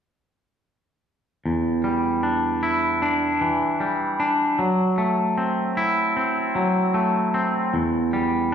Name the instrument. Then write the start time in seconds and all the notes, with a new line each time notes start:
clean electric guitar
1.46 E2
1.84 G3
2.23 D4
2.63 E4
3.02 D4
3.41 E3
3.80 G3
4.20 D4
4.59 F#3
4.98 A3
5.38 C4
5.77 E4
6.16 C4
6.55 F#3
6.94 A3
7.34 C4
7.74 E2
8.13 G3